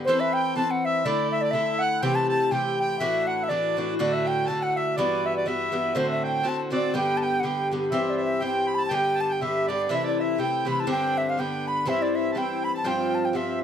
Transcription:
0.05 E3 C4 C5
0.09 A4 B4
0.20 E5
0.33 G5
0.55 E3 C4 A4 B4 A5
0.71 F#5
0.85 E5
1.05 D3 A3 E4 A4 D5
1.31 E5
1.41 D5
1.51 D3 A3 E4 A4 E5
1.79 F#5
2.01 C3 E3 A3 G4 G5
2.15 A5
2.29 A5
2.51 C3 E3 A3 G4 G5
2.79 G5
2.99 A2 E3 D4 F#4 E5
3.27 F#5
3.42 E5
3.48 A2 E3 D4 F#4 D5
3.77 A2 E3 D4 F#4
3.99 A2 D3 A3 F#4 D5
4.11 E5
4.25 G5
4.46 A2 D3 A3 A5
4.50 F#4
4.61 F#5
4.76 E5
4.96 G2 E3 B3 F#4 D5
5.25 E5
5.36 D5
5.46 G2 E3 B3 F#4 E5
5.72 G2 E3 B3 F#4
5.94 A2 D3 C4 F#4 C5
6.08 E5
6.23 G5
6.43 A2 D3 C4 F#4 A5
6.49 A5
6.71 A2 D3 C4 F#4 D5
6.75 D5
6.94 G2 D3 B3 G4 G5
7.17 G5 A5
7.23 G5
7.40 G2 D3 B3 F#5 G5
7.45 G4 G5
7.71 G2 D3 B3 G4
7.91 G2 E3 C4 G4 E5
8.05 E5
8.10 D5
8.17 E5
8.25 E5
8.40 G2 E3 C4 G4 G5
8.46 G5
8.67 B5
8.75 A5 B5
8.85 G5 A5
8.91 G2 D3 B3 G4 G5
9.15 A5
9.21 A5
9.29 G5
9.41 G2 D3 B3 G4 E5
9.46 E5
9.67 G2 D3 B3 G4 D5
9.72 D5
9.89 C3 E3 A3 E4 E5
9.95 E5
10.04 D5
10.19 E5
10.38 C3 E3 A3 E4 G5
10.42 G5
10.65 C3 E3 A3 E4 B5
10.70 B5
10.80 A5
10.87 G2 D3 C4 D4 G5
10.91 G5
11.17 E5
11.30 F5
11.38 G2 D3 B3 D4 G5
11.67 B5
11.86 G2 E3 C4 E4 E5
11.91 E5
12.02 D5
12.14 E5
12.32 G2 E3 G5 A5
12.36 C4 E4 G5
12.64 B5
12.75 A5
12.84 G2 F3 C4 F4 G5
13.15 A5
13.24 G5
13.33 G2 F3 C4 F4 E5

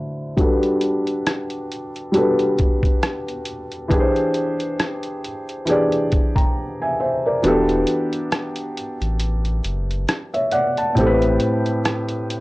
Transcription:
Already playing: D3 A3 E4 F#4 C5
0.37 G3 D4 F#4 A4, kick, closed hi-hat
0.42 B4
0.63 closed hi-hat
0.81 closed hi-hat
1.07 closed hi-hat
1.27 cross-stick, closed hi-hat
1.50 closed hi-hat
1.72 closed hi-hat
1.96 closed hi-hat
2.12 G3 D4 F#4 A4, closed hi-hat
2.17 B4
2.39 closed hi-hat
2.59 kick, closed hi-hat
2.83 kick, closed hi-hat
3.03 cross-stick, closed hi-hat
3.28 closed hi-hat
3.45 closed hi-hat
3.72 closed hi-hat
3.88 E3 D4 G4 G#4, kick, closed hi-hat
3.94 B4
4.00 C5
4.16 closed hi-hat
4.34 closed hi-hat
4.60 closed hi-hat
4.80 cross-stick, closed hi-hat
5.03 closed hi-hat
5.24 closed hi-hat
5.49 closed hi-hat
5.65 E3 D4 G4 G#4, closed hi-hat
5.71 D5
5.92 closed hi-hat
6.12 kick, closed hi-hat
6.36 G5 A#5, kick, closed hi-hat
6.82 E5 G#5
7.00 C5 E5
7.26 A#4 D5
7.42 E1 E3 B3 D4 F#4, closed hi-hat
7.46 G4 A4
7.69 closed hi-hat
7.87 closed hi-hat
8.13 closed hi-hat
8.32 cross-stick, closed hi-hat
8.56 closed hi-hat
8.77 closed hi-hat
9.01 A1, closed hi-hat
9.20 closed hi-hat
9.45 closed hi-hat
9.64 F#1, closed hi-hat
9.91 closed hi-hat
10.09 cross-stick, closed hi-hat
10.34 C#5 E5, closed hi-hat
10.51 D5 F#5, closed hi-hat
10.77 F#5 A5, closed hi-hat
10.95 A1 A2 A3 C4, closed hi-hat
10.99 G4 A4
11.07 B4
11.22 closed hi-hat
11.40 closed hi-hat
11.66 closed hi-hat
11.85 cross-stick, closed hi-hat
12.09 closed hi-hat
12.30 closed hi-hat

